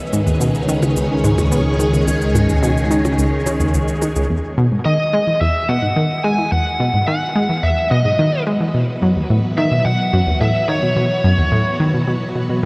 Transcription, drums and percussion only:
0, 0, Header, 1, 3, 480
1, 0, Start_track
1, 0, Key_signature, 4, "major"
1, 0, Tempo, 555556
1, 1794, Time_signature, 4, 2, 24, 8
1, 10932, End_track
2, 0, Start_track
2, 0, Title_t, "Percussion blips"
2, 713, Note_on_c, 9, 61, 68
2, 799, Note_off_c, 9, 61, 0
2, 1194, Note_on_c, 9, 61, 72
2, 1280, Note_off_c, 9, 61, 0
2, 2034, Note_on_c, 9, 61, 53
2, 2121, Note_off_c, 9, 61, 0
2, 2635, Note_on_c, 9, 61, 74
2, 2721, Note_off_c, 9, 61, 0
2, 2993, Note_on_c, 9, 61, 57
2, 3080, Note_off_c, 9, 61, 0
2, 3473, Note_on_c, 9, 61, 51
2, 3559, Note_off_c, 9, 61, 0
2, 10932, End_track
3, 0, Start_track
3, 0, Title_t, "Drums"
3, 113, Note_on_c, 9, 69, 71
3, 199, Note_off_c, 9, 69, 0
3, 234, Note_on_c, 9, 69, 45
3, 320, Note_off_c, 9, 69, 0
3, 353, Note_on_c, 9, 69, 68
3, 440, Note_off_c, 9, 69, 0
3, 474, Note_on_c, 9, 69, 35
3, 560, Note_off_c, 9, 69, 0
3, 594, Note_on_c, 9, 69, 71
3, 680, Note_off_c, 9, 69, 0
3, 713, Note_on_c, 9, 69, 48
3, 799, Note_off_c, 9, 69, 0
3, 833, Note_on_c, 9, 69, 69
3, 920, Note_off_c, 9, 69, 0
3, 1074, Note_on_c, 9, 69, 72
3, 1160, Note_off_c, 9, 69, 0
3, 1194, Note_on_c, 9, 69, 45
3, 1280, Note_off_c, 9, 69, 0
3, 1313, Note_on_c, 9, 69, 70
3, 1400, Note_off_c, 9, 69, 0
3, 1554, Note_on_c, 9, 69, 73
3, 1641, Note_off_c, 9, 69, 0
3, 1675, Note_on_c, 9, 69, 46
3, 1762, Note_off_c, 9, 69, 0
3, 1795, Note_on_c, 9, 69, 68
3, 1881, Note_off_c, 9, 69, 0
3, 1914, Note_on_c, 9, 69, 33
3, 2001, Note_off_c, 9, 69, 0
3, 2034, Note_on_c, 9, 69, 74
3, 2121, Note_off_c, 9, 69, 0
3, 2154, Note_on_c, 9, 69, 46
3, 2240, Note_off_c, 9, 69, 0
3, 2275, Note_on_c, 9, 69, 73
3, 2362, Note_off_c, 9, 69, 0
3, 2396, Note_on_c, 9, 69, 33
3, 2482, Note_off_c, 9, 69, 0
3, 2515, Note_on_c, 9, 69, 71
3, 2601, Note_off_c, 9, 69, 0
3, 2635, Note_on_c, 9, 69, 46
3, 2721, Note_off_c, 9, 69, 0
3, 2754, Note_on_c, 9, 69, 71
3, 2840, Note_off_c, 9, 69, 0
3, 2993, Note_on_c, 9, 69, 71
3, 3080, Note_off_c, 9, 69, 0
3, 3113, Note_on_c, 9, 69, 48
3, 3199, Note_off_c, 9, 69, 0
3, 3232, Note_on_c, 9, 69, 71
3, 3319, Note_off_c, 9, 69, 0
3, 3353, Note_on_c, 9, 69, 35
3, 3439, Note_off_c, 9, 69, 0
3, 3473, Note_on_c, 9, 69, 72
3, 3559, Note_off_c, 9, 69, 0
3, 3593, Note_on_c, 9, 69, 48
3, 3679, Note_off_c, 9, 69, 0
3, 10932, End_track
0, 0, End_of_file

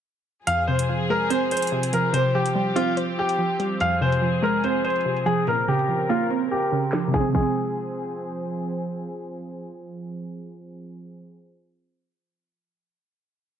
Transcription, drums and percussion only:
0, 0, Header, 1, 2, 480
1, 0, Start_track
1, 0, Key_signature, -4, "minor"
1, 0, Tempo, 416667
1, 544, Time_signature, 4, 2, 24, 8
1, 15665, End_track
2, 0, Start_track
2, 0, Title_t, "Drums"
2, 543, Note_on_c, 9, 42, 72
2, 658, Note_off_c, 9, 42, 0
2, 910, Note_on_c, 9, 42, 71
2, 1025, Note_off_c, 9, 42, 0
2, 1504, Note_on_c, 9, 42, 75
2, 1619, Note_off_c, 9, 42, 0
2, 1743, Note_on_c, 9, 42, 61
2, 1807, Note_off_c, 9, 42, 0
2, 1807, Note_on_c, 9, 42, 62
2, 1871, Note_off_c, 9, 42, 0
2, 1871, Note_on_c, 9, 42, 59
2, 1927, Note_off_c, 9, 42, 0
2, 1927, Note_on_c, 9, 42, 61
2, 2042, Note_off_c, 9, 42, 0
2, 2110, Note_on_c, 9, 42, 74
2, 2223, Note_off_c, 9, 42, 0
2, 2223, Note_on_c, 9, 42, 80
2, 2338, Note_off_c, 9, 42, 0
2, 2463, Note_on_c, 9, 42, 76
2, 2578, Note_off_c, 9, 42, 0
2, 2830, Note_on_c, 9, 42, 71
2, 2945, Note_off_c, 9, 42, 0
2, 3183, Note_on_c, 9, 42, 74
2, 3298, Note_off_c, 9, 42, 0
2, 3423, Note_on_c, 9, 42, 71
2, 3538, Note_off_c, 9, 42, 0
2, 3790, Note_on_c, 9, 42, 71
2, 3905, Note_off_c, 9, 42, 0
2, 4143, Note_on_c, 9, 42, 82
2, 4259, Note_off_c, 9, 42, 0
2, 4382, Note_on_c, 9, 42, 75
2, 4497, Note_off_c, 9, 42, 0
2, 4750, Note_on_c, 9, 42, 74
2, 4865, Note_off_c, 9, 42, 0
2, 5342, Note_on_c, 9, 42, 73
2, 5458, Note_off_c, 9, 42, 0
2, 5583, Note_on_c, 9, 42, 63
2, 5647, Note_off_c, 9, 42, 0
2, 5647, Note_on_c, 9, 42, 65
2, 5710, Note_off_c, 9, 42, 0
2, 5710, Note_on_c, 9, 42, 60
2, 5767, Note_off_c, 9, 42, 0
2, 5767, Note_on_c, 9, 42, 59
2, 5882, Note_off_c, 9, 42, 0
2, 5951, Note_on_c, 9, 42, 74
2, 6064, Note_off_c, 9, 42, 0
2, 6064, Note_on_c, 9, 42, 80
2, 6179, Note_off_c, 9, 42, 0
2, 6303, Note_on_c, 9, 42, 75
2, 6418, Note_off_c, 9, 42, 0
2, 6670, Note_on_c, 9, 42, 72
2, 6785, Note_off_c, 9, 42, 0
2, 7023, Note_on_c, 9, 42, 72
2, 7138, Note_off_c, 9, 42, 0
2, 7263, Note_on_c, 9, 42, 72
2, 7378, Note_off_c, 9, 42, 0
2, 7630, Note_on_c, 9, 42, 70
2, 7745, Note_off_c, 9, 42, 0
2, 7979, Note_on_c, 9, 39, 81
2, 7983, Note_on_c, 9, 38, 103
2, 7983, Note_on_c, 9, 42, 79
2, 8094, Note_off_c, 9, 39, 0
2, 8098, Note_off_c, 9, 38, 0
2, 8098, Note_off_c, 9, 42, 0
2, 8223, Note_on_c, 9, 36, 106
2, 8224, Note_on_c, 9, 38, 86
2, 8339, Note_off_c, 9, 36, 0
2, 8339, Note_off_c, 9, 38, 0
2, 8463, Note_on_c, 9, 36, 107
2, 8463, Note_on_c, 9, 49, 87
2, 8579, Note_off_c, 9, 36, 0
2, 8579, Note_off_c, 9, 49, 0
2, 15665, End_track
0, 0, End_of_file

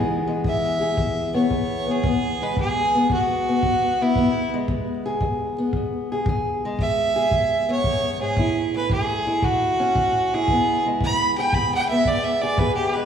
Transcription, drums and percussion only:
0, 0, Header, 1, 2, 480
1, 0, Start_track
1, 0, Key_signature, 4, "major"
1, 0, Tempo, 527704
1, 1856, Time_signature, 4, 2, 24, 8
1, 11871, End_track
2, 0, Start_track
2, 0, Title_t, "Drums"
2, 404, Note_on_c, 9, 36, 65
2, 495, Note_off_c, 9, 36, 0
2, 886, Note_on_c, 9, 36, 67
2, 977, Note_off_c, 9, 36, 0
2, 1369, Note_on_c, 9, 36, 62
2, 1460, Note_off_c, 9, 36, 0
2, 1852, Note_on_c, 9, 36, 75
2, 1943, Note_off_c, 9, 36, 0
2, 2334, Note_on_c, 9, 36, 63
2, 2425, Note_off_c, 9, 36, 0
2, 2817, Note_on_c, 9, 36, 68
2, 2908, Note_off_c, 9, 36, 0
2, 3299, Note_on_c, 9, 36, 65
2, 3390, Note_off_c, 9, 36, 0
2, 3780, Note_on_c, 9, 36, 69
2, 3871, Note_off_c, 9, 36, 0
2, 4258, Note_on_c, 9, 36, 60
2, 4349, Note_off_c, 9, 36, 0
2, 4736, Note_on_c, 9, 36, 65
2, 4827, Note_off_c, 9, 36, 0
2, 5212, Note_on_c, 9, 36, 60
2, 5303, Note_off_c, 9, 36, 0
2, 5693, Note_on_c, 9, 36, 77
2, 5784, Note_off_c, 9, 36, 0
2, 6174, Note_on_c, 9, 36, 62
2, 6265, Note_off_c, 9, 36, 0
2, 6652, Note_on_c, 9, 36, 64
2, 6743, Note_off_c, 9, 36, 0
2, 7132, Note_on_c, 9, 36, 64
2, 7223, Note_off_c, 9, 36, 0
2, 7610, Note_on_c, 9, 36, 69
2, 7701, Note_off_c, 9, 36, 0
2, 8092, Note_on_c, 9, 36, 62
2, 8183, Note_off_c, 9, 36, 0
2, 8572, Note_on_c, 9, 36, 66
2, 8663, Note_off_c, 9, 36, 0
2, 9053, Note_on_c, 9, 36, 61
2, 9144, Note_off_c, 9, 36, 0
2, 9532, Note_on_c, 9, 36, 69
2, 9622, Note_off_c, 9, 36, 0
2, 10011, Note_on_c, 9, 36, 66
2, 10101, Note_off_c, 9, 36, 0
2, 10486, Note_on_c, 9, 36, 71
2, 10576, Note_off_c, 9, 36, 0
2, 10962, Note_on_c, 9, 36, 64
2, 11053, Note_off_c, 9, 36, 0
2, 11441, Note_on_c, 9, 36, 80
2, 11532, Note_off_c, 9, 36, 0
2, 11871, End_track
0, 0, End_of_file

